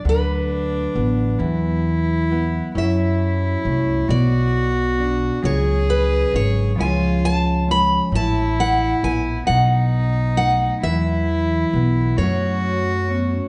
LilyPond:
<<
  \new Staff \with { instrumentName = "Steel-string acoustic guitar" } { \time 6/8 \key fis \minor \tempo 4. = 44 b'2~ b'8 r8 | e''4. d''4. | cis''8 b'8 cis''8 gis''8 a''8 b''8 | a''8 fis''8 gis''8 fis''4 fis''8 |
e''4 r8 cis''4. | }
  \new Staff \with { instrumentName = "Cello" } { \time 6/8 \key fis \minor d'4. e'4. | e'4. fis'4. | gis'4. eis'4 r8 | e'4. dis'4. |
e'4. fis'4. | }
  \new Staff \with { instrumentName = "Steel-string acoustic guitar" } { \time 6/8 \key fis \minor << { r4 b4. b8 | <fis cis' e' a'>4 cis'8 r4 d'8 | r4 cis'8 <gis cis' eis'>4 cis'8 | r4 b4. dis'8 |
r4 b8 <fis cis' fis' a'>4 cis'8 | } \\ { d4. e4. | fis,4. b,4. | cis4. cis4. | a,4. b,4. |
e4. fis,4. | } >> }
  \new Staff \with { instrumentName = "Vibraphone" } { \time 6/8 \key fis \minor fis4 b8 fis4 e'8 | e'4 a8 b4 d'8 | fis4 fis8 eis4 gis8 | e'4 e'8 fis4 a8 |
fis4 b8 a4 b16 cis'16 | }
  \new Staff \with { instrumentName = "Upright bass" } { \clef bass \time 6/8 \key fis \minor d,4 a,,8 e,4. | fis,4 bis,,8 b,,4. | cis,4 gis,,8 cis,4. | a,,4 ais,,8 b,,4. |
e,4 b,,8 fis,4. | }
>>